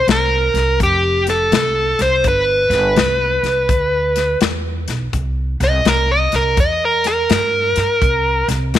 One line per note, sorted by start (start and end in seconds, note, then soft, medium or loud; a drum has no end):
0.07 0.51 C2 medium
0.07 0.78 A#4 medium
0.07 snare loud
0.07 closed hi-hat medium
0.54 0.78 C2 medium
0.54 snare soft
0.54 closed hi-hat soft
0.80 1.48 F1 medium
0.80 1.25 G4 medium
0.80 kick medium
0.80 closed hi-hat medium
1.27 2.02 A4 medium
1.27 snare soft
1.27 closed hi-hat medium
1.52 1.96 C2 medium
1.52 snare loud
1.52 closed hi-hat medium
1.99 2.23 C2 medium
1.99 2.27 C5 medium
1.99 snare soft
1.99 closed hi-hat medium
2.24 2.68 G1 medium
2.24 kick medium
2.24 closed hi-hat medium
2.28 4.39 B4 medium
2.70 2.94 G1 medium
2.70 snare soft
2.70 closed hi-hat soft
2.96 3.40 C2 medium
2.96 snare loud
2.96 closed hi-hat medium
3.43 3.67 C2 medium
3.43 snare soft
3.43 closed hi-hat soft
3.69 4.37 D2 medium
3.69 kick loud
3.69 closed hi-hat medium
4.16 snare soft
4.16 closed hi-hat medium
4.41 4.85 E2 medium
4.41 snare medium
4.41 closed hi-hat medium
4.88 5.12 B1 medium
4.88 snare soft
4.88 closed hi-hat medium
5.13 5.57 C2 medium
5.13 kick medium
5.13 closed hi-hat medium
5.60 5.84 C2 loud
5.60 5.86 D#5 medium
5.60 snare soft
5.60 closed hi-hat medium
5.85 6.29 C2 medium
5.85 6.10 A#4 medium
5.85 snare loud
5.85 closed hi-hat medium
6.11 6.34 D#5 medium
6.32 6.56 C2 medium
6.32 6.58 A#4 medium
6.32 snare soft
6.32 closed hi-hat medium
6.57 7.26 E2 medium
6.57 6.82 D#5 medium
6.57 kick loud
6.57 closed hi-hat medium
6.85 7.07 A#4 medium
7.04 8.47 A#4 medium
7.04 snare soft
7.04 closed hi-hat soft
7.30 7.73 G2 medium
7.30 snare loud
7.30 closed hi-hat medium
7.76 8.00 G2 medium
7.76 snare soft
7.76 closed hi-hat medium
8.02 8.45 C2 medium
8.02 kick medium
8.02 closed hi-hat medium
8.48 8.72 C2 loud
8.48 snare soft
8.48 closed hi-hat medium
8.74 8.79 F2 medium
8.74 snare loud
8.74 closed hi-hat medium